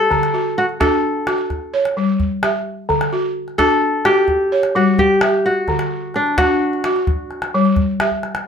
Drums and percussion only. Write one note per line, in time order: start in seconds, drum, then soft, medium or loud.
0.11 calabash thump medium
0.11 calabash click soft
0.23 calabash click soft
0.35 calabash click soft
0.69 calabash click soft
0.81 calabash thump medium
0.81 calabash click medium
0.92 calabash click soft
1.27 calabash click soft
1.38 calabash click soft
1.50 calabash thump medium
1.50 calabash click soft
1.85 calabash click soft
2.20 calabash thump medium
2.43 calabash click medium
2.90 calabash thump medium
2.90 calabash click soft
3.01 calabash click medium
3.12 calabash click soft
3.48 calabash click soft
3.59 calabash thump medium
3.59 calabash click medium
3.71 calabash click soft
4.05 calabash click medium
4.16 calabash click soft
4.28 calabash thump medium
4.28 calabash click soft
4.63 calabash click soft
4.98 calabash thump medium
5.21 calabash click medium
5.68 calabash thump medium
5.68 calabash click soft
5.79 calabash click medium
6.14 calabash click soft
6.27 calabash click soft
6.38 calabash thump medium
6.38 calabash click medium
6.73 calabash click soft
6.84 calabash click medium
6.96 calabash click soft
7.07 calabash thump medium
7.31 calabash click soft
7.42 calabash click soft
7.65 calabash click soft
7.76 calabash thump medium
7.76 calabash click soft
8.00 calabash click medium
8.11 calabash thump soft
8.23 calabash click soft
8.35 calabash click medium